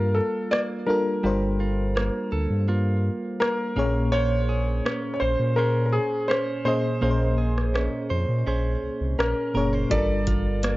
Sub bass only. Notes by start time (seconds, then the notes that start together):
Already playing: G2
1.24 G1
2.32 D2
2.50 G2
3.77 A#1
5.22 A#1
5.39 A#2
7.02 A#1
8.11 F2
8.29 A#2
8.47 A#1
8.83 C2
9.01 C2
9.19 A#1
9.55 F#1
9.91 G1